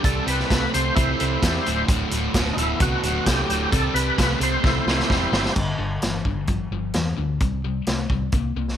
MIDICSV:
0, 0, Header, 1, 5, 480
1, 0, Start_track
1, 0, Tempo, 460123
1, 47, Time_signature, 4, 2, 24, 8
1, 9149, End_track
2, 0, Start_track
2, 0, Title_t, "Tonewheel organ"
2, 0, Program_c, 0, 16
2, 49, Note_on_c, 0, 69, 77
2, 281, Note_off_c, 0, 69, 0
2, 292, Note_on_c, 0, 71, 80
2, 755, Note_off_c, 0, 71, 0
2, 773, Note_on_c, 0, 72, 86
2, 988, Note_off_c, 0, 72, 0
2, 996, Note_on_c, 0, 64, 85
2, 1000, Note_on_c, 0, 72, 86
2, 1918, Note_off_c, 0, 64, 0
2, 1933, Note_off_c, 0, 72, 0
2, 2644, Note_on_c, 0, 63, 60
2, 2675, Note_off_c, 0, 63, 0
2, 2698, Note_on_c, 0, 64, 82
2, 2924, Note_off_c, 0, 64, 0
2, 2943, Note_on_c, 0, 66, 85
2, 3398, Note_off_c, 0, 66, 0
2, 3405, Note_on_c, 0, 67, 95
2, 3868, Note_off_c, 0, 67, 0
2, 3880, Note_on_c, 0, 69, 88
2, 4113, Note_off_c, 0, 69, 0
2, 4114, Note_on_c, 0, 71, 97
2, 4582, Note_off_c, 0, 71, 0
2, 4624, Note_on_c, 0, 72, 94
2, 4843, Note_off_c, 0, 72, 0
2, 4852, Note_on_c, 0, 64, 83
2, 4856, Note_on_c, 0, 72, 97
2, 5764, Note_off_c, 0, 64, 0
2, 5779, Note_off_c, 0, 72, 0
2, 9149, End_track
3, 0, Start_track
3, 0, Title_t, "Distorted electric guitar"
3, 0, Program_c, 1, 30
3, 43, Note_on_c, 1, 48, 87
3, 46, Note_on_c, 1, 55, 95
3, 261, Note_off_c, 1, 48, 0
3, 262, Note_off_c, 1, 55, 0
3, 276, Note_on_c, 1, 48, 65
3, 284, Note_on_c, 1, 55, 79
3, 497, Note_off_c, 1, 48, 0
3, 501, Note_off_c, 1, 55, 0
3, 525, Note_on_c, 1, 48, 86
3, 529, Note_on_c, 1, 57, 83
3, 742, Note_off_c, 1, 48, 0
3, 744, Note_off_c, 1, 57, 0
3, 771, Note_on_c, 1, 48, 74
3, 773, Note_on_c, 1, 57, 88
3, 984, Note_off_c, 1, 48, 0
3, 986, Note_off_c, 1, 57, 0
3, 1009, Note_on_c, 1, 48, 80
3, 1010, Note_on_c, 1, 57, 85
3, 1223, Note_off_c, 1, 48, 0
3, 1224, Note_off_c, 1, 57, 0
3, 1251, Note_on_c, 1, 48, 83
3, 1251, Note_on_c, 1, 57, 81
3, 1464, Note_off_c, 1, 48, 0
3, 1464, Note_off_c, 1, 57, 0
3, 1489, Note_on_c, 1, 48, 74
3, 1497, Note_on_c, 1, 55, 91
3, 1703, Note_off_c, 1, 48, 0
3, 1707, Note_off_c, 1, 55, 0
3, 1731, Note_on_c, 1, 38, 67
3, 1741, Note_on_c, 1, 45, 75
3, 1944, Note_off_c, 1, 38, 0
3, 1949, Note_off_c, 1, 45, 0
3, 1978, Note_on_c, 1, 38, 78
3, 1984, Note_on_c, 1, 45, 94
3, 2187, Note_off_c, 1, 38, 0
3, 2190, Note_off_c, 1, 45, 0
3, 2217, Note_on_c, 1, 38, 69
3, 2217, Note_on_c, 1, 45, 75
3, 2426, Note_off_c, 1, 38, 0
3, 2426, Note_off_c, 1, 45, 0
3, 2457, Note_on_c, 1, 38, 85
3, 2460, Note_on_c, 1, 47, 100
3, 2666, Note_off_c, 1, 38, 0
3, 2668, Note_off_c, 1, 47, 0
3, 2704, Note_on_c, 1, 38, 83
3, 2707, Note_on_c, 1, 47, 91
3, 2909, Note_off_c, 1, 38, 0
3, 2911, Note_off_c, 1, 47, 0
3, 2933, Note_on_c, 1, 38, 83
3, 2935, Note_on_c, 1, 47, 89
3, 3144, Note_off_c, 1, 38, 0
3, 3145, Note_off_c, 1, 47, 0
3, 3179, Note_on_c, 1, 47, 91
3, 3181, Note_on_c, 1, 38, 80
3, 3387, Note_off_c, 1, 47, 0
3, 3388, Note_off_c, 1, 38, 0
3, 3414, Note_on_c, 1, 38, 81
3, 3421, Note_on_c, 1, 45, 97
3, 3624, Note_off_c, 1, 38, 0
3, 3627, Note_off_c, 1, 45, 0
3, 3650, Note_on_c, 1, 38, 64
3, 3656, Note_on_c, 1, 45, 65
3, 3862, Note_off_c, 1, 38, 0
3, 3865, Note_off_c, 1, 45, 0
3, 3881, Note_on_c, 1, 48, 85
3, 3891, Note_on_c, 1, 55, 102
3, 4097, Note_off_c, 1, 48, 0
3, 4102, Note_off_c, 1, 55, 0
3, 4123, Note_on_c, 1, 48, 71
3, 4131, Note_on_c, 1, 55, 78
3, 4338, Note_off_c, 1, 48, 0
3, 4342, Note_off_c, 1, 55, 0
3, 4358, Note_on_c, 1, 48, 76
3, 4360, Note_on_c, 1, 57, 95
3, 4575, Note_off_c, 1, 48, 0
3, 4576, Note_off_c, 1, 57, 0
3, 4591, Note_on_c, 1, 48, 80
3, 4592, Note_on_c, 1, 57, 85
3, 4811, Note_off_c, 1, 48, 0
3, 4812, Note_off_c, 1, 57, 0
3, 4826, Note_on_c, 1, 48, 76
3, 4834, Note_on_c, 1, 57, 86
3, 5049, Note_off_c, 1, 48, 0
3, 5053, Note_off_c, 1, 57, 0
3, 5083, Note_on_c, 1, 48, 66
3, 5090, Note_on_c, 1, 57, 87
3, 5297, Note_off_c, 1, 48, 0
3, 5301, Note_off_c, 1, 57, 0
3, 5321, Note_on_c, 1, 48, 82
3, 5326, Note_on_c, 1, 55, 100
3, 5536, Note_off_c, 1, 48, 0
3, 5539, Note_off_c, 1, 55, 0
3, 5553, Note_on_c, 1, 48, 66
3, 5554, Note_on_c, 1, 55, 73
3, 5773, Note_off_c, 1, 48, 0
3, 5773, Note_off_c, 1, 55, 0
3, 5788, Note_on_c, 1, 43, 67
3, 5796, Note_on_c, 1, 50, 80
3, 6010, Note_off_c, 1, 43, 0
3, 6014, Note_off_c, 1, 50, 0
3, 6034, Note_on_c, 1, 43, 52
3, 6034, Note_on_c, 1, 50, 56
3, 6253, Note_off_c, 1, 50, 0
3, 6254, Note_off_c, 1, 43, 0
3, 6286, Note_on_c, 1, 43, 60
3, 6289, Note_on_c, 1, 52, 71
3, 6500, Note_off_c, 1, 43, 0
3, 6501, Note_off_c, 1, 52, 0
3, 6520, Note_on_c, 1, 43, 54
3, 6530, Note_on_c, 1, 50, 68
3, 6737, Note_off_c, 1, 43, 0
3, 6742, Note_off_c, 1, 50, 0
3, 6762, Note_on_c, 1, 43, 62
3, 6770, Note_on_c, 1, 53, 69
3, 6978, Note_off_c, 1, 43, 0
3, 6982, Note_off_c, 1, 53, 0
3, 7011, Note_on_c, 1, 43, 61
3, 7013, Note_on_c, 1, 53, 69
3, 7223, Note_off_c, 1, 43, 0
3, 7224, Note_off_c, 1, 53, 0
3, 7247, Note_on_c, 1, 52, 74
3, 7248, Note_on_c, 1, 43, 71
3, 7461, Note_off_c, 1, 52, 0
3, 7462, Note_off_c, 1, 43, 0
3, 7476, Note_on_c, 1, 43, 52
3, 7487, Note_on_c, 1, 50, 65
3, 7696, Note_off_c, 1, 43, 0
3, 7702, Note_off_c, 1, 50, 0
3, 7729, Note_on_c, 1, 48, 71
3, 7731, Note_on_c, 1, 55, 74
3, 7943, Note_off_c, 1, 48, 0
3, 7944, Note_off_c, 1, 55, 0
3, 7974, Note_on_c, 1, 48, 58
3, 7975, Note_on_c, 1, 55, 64
3, 8186, Note_off_c, 1, 48, 0
3, 8186, Note_off_c, 1, 55, 0
3, 8222, Note_on_c, 1, 48, 65
3, 8222, Note_on_c, 1, 57, 74
3, 8430, Note_off_c, 1, 48, 0
3, 8430, Note_off_c, 1, 57, 0
3, 8458, Note_on_c, 1, 48, 63
3, 8470, Note_on_c, 1, 55, 66
3, 8668, Note_off_c, 1, 48, 0
3, 8675, Note_off_c, 1, 55, 0
3, 8699, Note_on_c, 1, 48, 59
3, 8708, Note_on_c, 1, 58, 70
3, 8909, Note_off_c, 1, 48, 0
3, 8914, Note_off_c, 1, 58, 0
3, 8934, Note_on_c, 1, 48, 63
3, 8936, Note_on_c, 1, 58, 72
3, 9147, Note_off_c, 1, 48, 0
3, 9148, Note_off_c, 1, 58, 0
3, 9149, End_track
4, 0, Start_track
4, 0, Title_t, "Fingered electric bass"
4, 0, Program_c, 2, 33
4, 45, Note_on_c, 2, 36, 97
4, 207, Note_off_c, 2, 36, 0
4, 280, Note_on_c, 2, 36, 80
4, 443, Note_off_c, 2, 36, 0
4, 528, Note_on_c, 2, 36, 70
4, 689, Note_off_c, 2, 36, 0
4, 777, Note_on_c, 2, 36, 78
4, 935, Note_off_c, 2, 36, 0
4, 1011, Note_on_c, 2, 36, 87
4, 1171, Note_off_c, 2, 36, 0
4, 1262, Note_on_c, 2, 36, 91
4, 1417, Note_off_c, 2, 36, 0
4, 1490, Note_on_c, 2, 40, 88
4, 1650, Note_off_c, 2, 40, 0
4, 1744, Note_on_c, 2, 26, 76
4, 1899, Note_off_c, 2, 26, 0
4, 1969, Note_on_c, 2, 26, 89
4, 2129, Note_off_c, 2, 26, 0
4, 2211, Note_on_c, 2, 26, 89
4, 2370, Note_off_c, 2, 26, 0
4, 2445, Note_on_c, 2, 26, 82
4, 2606, Note_off_c, 2, 26, 0
4, 2680, Note_on_c, 2, 26, 86
4, 2842, Note_off_c, 2, 26, 0
4, 2923, Note_on_c, 2, 36, 91
4, 3084, Note_off_c, 2, 36, 0
4, 3160, Note_on_c, 2, 26, 90
4, 3322, Note_off_c, 2, 26, 0
4, 3412, Note_on_c, 2, 36, 86
4, 3570, Note_off_c, 2, 36, 0
4, 3642, Note_on_c, 2, 26, 81
4, 3803, Note_off_c, 2, 26, 0
4, 3882, Note_on_c, 2, 36, 96
4, 4043, Note_off_c, 2, 36, 0
4, 4108, Note_on_c, 2, 36, 84
4, 4273, Note_off_c, 2, 36, 0
4, 4369, Note_on_c, 2, 36, 74
4, 4527, Note_off_c, 2, 36, 0
4, 4590, Note_on_c, 2, 36, 92
4, 4755, Note_off_c, 2, 36, 0
4, 4840, Note_on_c, 2, 36, 84
4, 5001, Note_off_c, 2, 36, 0
4, 5067, Note_on_c, 2, 36, 83
4, 5232, Note_off_c, 2, 36, 0
4, 5316, Note_on_c, 2, 28, 88
4, 5478, Note_off_c, 2, 28, 0
4, 5548, Note_on_c, 2, 31, 86
4, 5714, Note_off_c, 2, 31, 0
4, 5804, Note_on_c, 2, 31, 75
4, 6006, Note_off_c, 2, 31, 0
4, 6033, Note_on_c, 2, 31, 68
4, 6240, Note_off_c, 2, 31, 0
4, 6278, Note_on_c, 2, 31, 62
4, 6483, Note_off_c, 2, 31, 0
4, 6522, Note_on_c, 2, 31, 67
4, 6726, Note_off_c, 2, 31, 0
4, 6763, Note_on_c, 2, 31, 64
4, 6967, Note_off_c, 2, 31, 0
4, 7000, Note_on_c, 2, 31, 63
4, 7205, Note_off_c, 2, 31, 0
4, 7246, Note_on_c, 2, 40, 63
4, 7449, Note_off_c, 2, 40, 0
4, 7492, Note_on_c, 2, 38, 69
4, 7693, Note_off_c, 2, 38, 0
4, 7730, Note_on_c, 2, 36, 80
4, 8136, Note_off_c, 2, 36, 0
4, 8209, Note_on_c, 2, 36, 60
4, 8412, Note_off_c, 2, 36, 0
4, 8448, Note_on_c, 2, 36, 75
4, 8652, Note_off_c, 2, 36, 0
4, 8688, Note_on_c, 2, 36, 70
4, 8892, Note_off_c, 2, 36, 0
4, 8927, Note_on_c, 2, 36, 72
4, 9131, Note_off_c, 2, 36, 0
4, 9149, End_track
5, 0, Start_track
5, 0, Title_t, "Drums"
5, 44, Note_on_c, 9, 36, 114
5, 44, Note_on_c, 9, 42, 82
5, 148, Note_off_c, 9, 36, 0
5, 148, Note_off_c, 9, 42, 0
5, 287, Note_on_c, 9, 42, 62
5, 391, Note_off_c, 9, 42, 0
5, 411, Note_on_c, 9, 38, 28
5, 516, Note_off_c, 9, 38, 0
5, 526, Note_on_c, 9, 36, 81
5, 528, Note_on_c, 9, 42, 77
5, 536, Note_on_c, 9, 38, 115
5, 631, Note_off_c, 9, 36, 0
5, 632, Note_off_c, 9, 42, 0
5, 640, Note_off_c, 9, 38, 0
5, 774, Note_on_c, 9, 42, 69
5, 878, Note_off_c, 9, 42, 0
5, 1008, Note_on_c, 9, 36, 113
5, 1011, Note_on_c, 9, 42, 93
5, 1112, Note_off_c, 9, 36, 0
5, 1115, Note_off_c, 9, 42, 0
5, 1249, Note_on_c, 9, 42, 75
5, 1354, Note_off_c, 9, 42, 0
5, 1487, Note_on_c, 9, 36, 81
5, 1487, Note_on_c, 9, 42, 95
5, 1495, Note_on_c, 9, 38, 120
5, 1591, Note_off_c, 9, 36, 0
5, 1591, Note_off_c, 9, 42, 0
5, 1600, Note_off_c, 9, 38, 0
5, 1735, Note_on_c, 9, 42, 72
5, 1839, Note_off_c, 9, 42, 0
5, 1965, Note_on_c, 9, 42, 94
5, 1966, Note_on_c, 9, 36, 123
5, 2070, Note_off_c, 9, 42, 0
5, 2071, Note_off_c, 9, 36, 0
5, 2204, Note_on_c, 9, 42, 62
5, 2308, Note_off_c, 9, 42, 0
5, 2442, Note_on_c, 9, 42, 100
5, 2445, Note_on_c, 9, 36, 79
5, 2450, Note_on_c, 9, 38, 116
5, 2546, Note_off_c, 9, 42, 0
5, 2549, Note_off_c, 9, 36, 0
5, 2555, Note_off_c, 9, 38, 0
5, 2689, Note_on_c, 9, 42, 80
5, 2793, Note_off_c, 9, 42, 0
5, 2921, Note_on_c, 9, 42, 93
5, 2926, Note_on_c, 9, 36, 118
5, 3025, Note_off_c, 9, 42, 0
5, 3030, Note_off_c, 9, 36, 0
5, 3165, Note_on_c, 9, 42, 76
5, 3269, Note_off_c, 9, 42, 0
5, 3403, Note_on_c, 9, 42, 91
5, 3405, Note_on_c, 9, 36, 76
5, 3411, Note_on_c, 9, 38, 108
5, 3507, Note_off_c, 9, 42, 0
5, 3509, Note_off_c, 9, 36, 0
5, 3515, Note_off_c, 9, 38, 0
5, 3649, Note_on_c, 9, 42, 72
5, 3753, Note_off_c, 9, 42, 0
5, 3886, Note_on_c, 9, 36, 110
5, 3886, Note_on_c, 9, 42, 94
5, 3990, Note_off_c, 9, 36, 0
5, 3990, Note_off_c, 9, 42, 0
5, 4128, Note_on_c, 9, 42, 65
5, 4232, Note_off_c, 9, 42, 0
5, 4364, Note_on_c, 9, 36, 84
5, 4366, Note_on_c, 9, 42, 87
5, 4375, Note_on_c, 9, 38, 113
5, 4469, Note_off_c, 9, 36, 0
5, 4471, Note_off_c, 9, 42, 0
5, 4479, Note_off_c, 9, 38, 0
5, 4602, Note_on_c, 9, 42, 66
5, 4706, Note_off_c, 9, 42, 0
5, 4840, Note_on_c, 9, 36, 116
5, 4846, Note_on_c, 9, 38, 65
5, 4944, Note_off_c, 9, 36, 0
5, 4950, Note_off_c, 9, 38, 0
5, 5087, Note_on_c, 9, 38, 80
5, 5192, Note_off_c, 9, 38, 0
5, 5211, Note_on_c, 9, 38, 58
5, 5316, Note_off_c, 9, 38, 0
5, 5320, Note_on_c, 9, 36, 82
5, 5325, Note_on_c, 9, 38, 81
5, 5424, Note_off_c, 9, 36, 0
5, 5429, Note_off_c, 9, 38, 0
5, 5561, Note_on_c, 9, 38, 100
5, 5665, Note_off_c, 9, 38, 0
5, 5688, Note_on_c, 9, 38, 86
5, 5793, Note_off_c, 9, 38, 0
5, 5800, Note_on_c, 9, 49, 72
5, 5802, Note_on_c, 9, 36, 85
5, 5904, Note_off_c, 9, 49, 0
5, 5906, Note_off_c, 9, 36, 0
5, 6278, Note_on_c, 9, 42, 54
5, 6287, Note_on_c, 9, 38, 98
5, 6383, Note_off_c, 9, 42, 0
5, 6391, Note_off_c, 9, 38, 0
5, 6520, Note_on_c, 9, 36, 67
5, 6625, Note_off_c, 9, 36, 0
5, 6753, Note_on_c, 9, 42, 53
5, 6761, Note_on_c, 9, 36, 82
5, 6858, Note_off_c, 9, 42, 0
5, 6865, Note_off_c, 9, 36, 0
5, 7235, Note_on_c, 9, 42, 54
5, 7243, Note_on_c, 9, 38, 97
5, 7339, Note_off_c, 9, 42, 0
5, 7348, Note_off_c, 9, 38, 0
5, 7724, Note_on_c, 9, 42, 47
5, 7727, Note_on_c, 9, 36, 94
5, 7828, Note_off_c, 9, 42, 0
5, 7832, Note_off_c, 9, 36, 0
5, 8205, Note_on_c, 9, 42, 50
5, 8214, Note_on_c, 9, 38, 88
5, 8310, Note_off_c, 9, 42, 0
5, 8318, Note_off_c, 9, 38, 0
5, 8448, Note_on_c, 9, 36, 71
5, 8552, Note_off_c, 9, 36, 0
5, 8680, Note_on_c, 9, 42, 49
5, 8687, Note_on_c, 9, 36, 93
5, 8785, Note_off_c, 9, 42, 0
5, 8791, Note_off_c, 9, 36, 0
5, 9057, Note_on_c, 9, 38, 27
5, 9149, Note_off_c, 9, 38, 0
5, 9149, End_track
0, 0, End_of_file